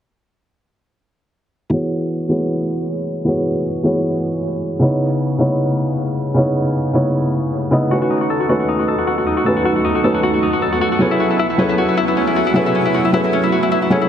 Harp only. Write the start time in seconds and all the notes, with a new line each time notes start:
7.91 F#4
8.01 F#4
8.10 D#4
8.21 F#4
8.30 A4
8.40 F#4
8.49 F#4
8.60 F#4
8.68 D#4
8.79 F#4
8.88 A4
8.98 F#4
9.07 F#4
9.18 F#4
9.26 D#4
9.37 F#4
9.46 A4
9.56 F#4
9.65 F#4
9.76 F#4
9.84 D#4
9.95 F#4
10.04 A4
10.14 F#4
10.23 F#4
10.34 F#4
10.43 D#4
10.53 F#4
10.62 A4
10.72 F#4
10.81 F#4
10.92 F#4
11.01 C#4
11.11 E4
11.20 F#4
11.30 E4
11.39 E4
11.50 E4
11.59 C#4
11.69 E4
11.78 F#4
11.88 E4
11.97 E4
12.08 E4
12.17 C#4
12.27 E4
12.36 F#4
12.47 E4
12.56 E4
12.66 E4
12.75 C#4
12.85 E4
12.94 F#4
13.05 E4
13.14 E4
13.24 E4
13.33 C#4
13.43 E4
13.52 F#4
13.63 E4
13.72 E4
13.82 E4
13.91 C#4
14.01 E4